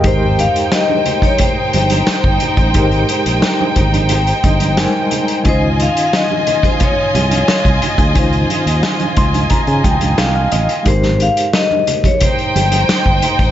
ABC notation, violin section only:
X:1
M:4/4
L:1/8
Q:1/4=89
K:Ab
V:1 name="Violin section"
[Ecg]8- | [Ecg]8 | [Fea]8- | [Fea]8 |
z4 [Ecg]4 |]